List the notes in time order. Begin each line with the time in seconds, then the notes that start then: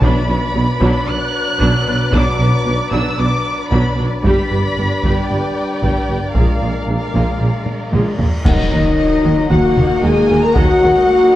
0.00 B1 B2 F#3 D4 B4 D5 B5, taiko
0.29 B1 B2 F#3 D4
0.55 B1 B2 F#3 B3
0.80 B1 B2 F#3 D4, taiko
1.07 B1 B2 F#3 D4 F#6
1.59 B1 B2 F#3 D4, taiko
1.85 B1 B2 F#3 D4
2.11 B1 B2 F#3 D4 D6, taiko
2.38 B1 B2 F#3 D4
2.65 B1 B2 F#3 B3
2.91 B1 B2 F#3 D4 E6, taiko
3.18 B1 B2 F#3 D4 D6
3.70 B1 B2 F#3 D4 B5, taiko
3.98 B1 B2 F#3 D4
4.23 G1 G2 G3 D4 G4 B4 D5 B5, taiko
4.51 G1 G2 G3 G4
4.77 G1 G2 G3 D4
5.03 G1 G2 G3 G4, taiko
5.29 G1 G2 G3 G4 G5
5.83 G1 G2 G3 G4, taiko
6.09 G1 G2 G3 G4
6.34 A#1 A#2 G#3 F4 A#4 F5, taiko, reverse cymbal
6.61 A#1 A#2 G#3 F4
6.86 A#1 A#2 G#3 D4
7.13 A#1 A#2 G#3 F4, taiko
7.39 A#1 A#2 G#3 F4
7.66 taiko high
7.92 A#1 A#2 G#3 F4, taiko mid
8.19 A#1 A#2 G#3 F4, taiko low
8.44 D#2 D#3 F#3 D#4 F#4 A#4 D#5 F#5, concert bass drum, taiko, crash, impact
8.48 D#4 D#5
8.71 D#2 D#3 A#4
9.24 D#2 D#3 A#4
9.49 D#2 D#3 F#3 A#3 F#4 F#5, taiko
9.76 D#2 D#3 A#4, taiko mid
10.02 D#2 D#3 G#3 G#4 D#5 G#5
10.29 D#2 D#3 A#4
10.41 A#3 A#5
10.45 A#4
10.53 D#2 D#3 F#3 F#4 F#5, taiko
10.81 D#2 D#3 G#3 A#4
11.07 A#3